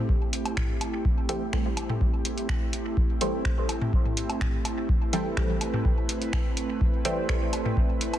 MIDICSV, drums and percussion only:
0, 0, Header, 1, 2, 480
1, 0, Start_track
1, 0, Key_signature, 0, "minor"
1, 0, Tempo, 480000
1, 1050, Time_signature, 4, 2, 24, 8
1, 8187, End_track
2, 0, Start_track
2, 0, Title_t, "Drums"
2, 90, Note_on_c, 9, 36, 119
2, 190, Note_off_c, 9, 36, 0
2, 330, Note_on_c, 9, 42, 82
2, 430, Note_off_c, 9, 42, 0
2, 455, Note_on_c, 9, 42, 31
2, 455, Note_on_c, 9, 77, 76
2, 555, Note_off_c, 9, 42, 0
2, 555, Note_off_c, 9, 77, 0
2, 570, Note_on_c, 9, 26, 75
2, 570, Note_on_c, 9, 36, 101
2, 570, Note_on_c, 9, 45, 82
2, 670, Note_off_c, 9, 26, 0
2, 670, Note_off_c, 9, 36, 0
2, 670, Note_off_c, 9, 45, 0
2, 810, Note_on_c, 9, 77, 70
2, 811, Note_on_c, 9, 42, 68
2, 910, Note_off_c, 9, 77, 0
2, 911, Note_off_c, 9, 42, 0
2, 1050, Note_on_c, 9, 36, 120
2, 1150, Note_off_c, 9, 36, 0
2, 1290, Note_on_c, 9, 42, 87
2, 1390, Note_off_c, 9, 42, 0
2, 1530, Note_on_c, 9, 26, 77
2, 1530, Note_on_c, 9, 36, 104
2, 1630, Note_off_c, 9, 26, 0
2, 1630, Note_off_c, 9, 36, 0
2, 1770, Note_on_c, 9, 77, 79
2, 1771, Note_on_c, 9, 42, 74
2, 1870, Note_off_c, 9, 77, 0
2, 1871, Note_off_c, 9, 42, 0
2, 1895, Note_on_c, 9, 45, 85
2, 1995, Note_off_c, 9, 45, 0
2, 2010, Note_on_c, 9, 36, 125
2, 2110, Note_off_c, 9, 36, 0
2, 2250, Note_on_c, 9, 42, 81
2, 2351, Note_off_c, 9, 42, 0
2, 2376, Note_on_c, 9, 42, 33
2, 2476, Note_off_c, 9, 42, 0
2, 2490, Note_on_c, 9, 36, 104
2, 2491, Note_on_c, 9, 26, 71
2, 2590, Note_off_c, 9, 36, 0
2, 2591, Note_off_c, 9, 26, 0
2, 2731, Note_on_c, 9, 42, 70
2, 2831, Note_off_c, 9, 42, 0
2, 2971, Note_on_c, 9, 36, 122
2, 3071, Note_off_c, 9, 36, 0
2, 3210, Note_on_c, 9, 42, 86
2, 3310, Note_off_c, 9, 42, 0
2, 3450, Note_on_c, 9, 26, 72
2, 3451, Note_on_c, 9, 36, 106
2, 3550, Note_off_c, 9, 26, 0
2, 3551, Note_off_c, 9, 36, 0
2, 3690, Note_on_c, 9, 77, 76
2, 3691, Note_on_c, 9, 42, 69
2, 3790, Note_off_c, 9, 77, 0
2, 3791, Note_off_c, 9, 42, 0
2, 3815, Note_on_c, 9, 45, 90
2, 3915, Note_off_c, 9, 45, 0
2, 3931, Note_on_c, 9, 36, 119
2, 4031, Note_off_c, 9, 36, 0
2, 4055, Note_on_c, 9, 45, 79
2, 4155, Note_off_c, 9, 45, 0
2, 4171, Note_on_c, 9, 42, 81
2, 4271, Note_off_c, 9, 42, 0
2, 4295, Note_on_c, 9, 77, 75
2, 4296, Note_on_c, 9, 42, 33
2, 4395, Note_off_c, 9, 77, 0
2, 4396, Note_off_c, 9, 42, 0
2, 4410, Note_on_c, 9, 45, 77
2, 4411, Note_on_c, 9, 26, 72
2, 4411, Note_on_c, 9, 36, 104
2, 4510, Note_off_c, 9, 45, 0
2, 4511, Note_off_c, 9, 26, 0
2, 4511, Note_off_c, 9, 36, 0
2, 4650, Note_on_c, 9, 77, 74
2, 4651, Note_on_c, 9, 42, 70
2, 4750, Note_off_c, 9, 77, 0
2, 4751, Note_off_c, 9, 42, 0
2, 4891, Note_on_c, 9, 36, 120
2, 4991, Note_off_c, 9, 36, 0
2, 5131, Note_on_c, 9, 42, 84
2, 5231, Note_off_c, 9, 42, 0
2, 5371, Note_on_c, 9, 26, 75
2, 5371, Note_on_c, 9, 36, 99
2, 5471, Note_off_c, 9, 26, 0
2, 5471, Note_off_c, 9, 36, 0
2, 5611, Note_on_c, 9, 42, 71
2, 5611, Note_on_c, 9, 77, 78
2, 5711, Note_off_c, 9, 42, 0
2, 5711, Note_off_c, 9, 77, 0
2, 5736, Note_on_c, 9, 45, 83
2, 5836, Note_off_c, 9, 45, 0
2, 5851, Note_on_c, 9, 36, 112
2, 5951, Note_off_c, 9, 36, 0
2, 6090, Note_on_c, 9, 42, 81
2, 6190, Note_off_c, 9, 42, 0
2, 6216, Note_on_c, 9, 42, 33
2, 6316, Note_off_c, 9, 42, 0
2, 6330, Note_on_c, 9, 26, 77
2, 6331, Note_on_c, 9, 36, 101
2, 6430, Note_off_c, 9, 26, 0
2, 6431, Note_off_c, 9, 36, 0
2, 6570, Note_on_c, 9, 42, 68
2, 6670, Note_off_c, 9, 42, 0
2, 6810, Note_on_c, 9, 36, 110
2, 6910, Note_off_c, 9, 36, 0
2, 7050, Note_on_c, 9, 42, 80
2, 7150, Note_off_c, 9, 42, 0
2, 7290, Note_on_c, 9, 26, 75
2, 7290, Note_on_c, 9, 36, 96
2, 7390, Note_off_c, 9, 26, 0
2, 7390, Note_off_c, 9, 36, 0
2, 7530, Note_on_c, 9, 42, 63
2, 7530, Note_on_c, 9, 77, 72
2, 7630, Note_off_c, 9, 42, 0
2, 7630, Note_off_c, 9, 77, 0
2, 7655, Note_on_c, 9, 45, 84
2, 7755, Note_off_c, 9, 45, 0
2, 7770, Note_on_c, 9, 36, 114
2, 7870, Note_off_c, 9, 36, 0
2, 8010, Note_on_c, 9, 42, 75
2, 8110, Note_off_c, 9, 42, 0
2, 8135, Note_on_c, 9, 42, 32
2, 8135, Note_on_c, 9, 77, 75
2, 8187, Note_off_c, 9, 42, 0
2, 8187, Note_off_c, 9, 77, 0
2, 8187, End_track
0, 0, End_of_file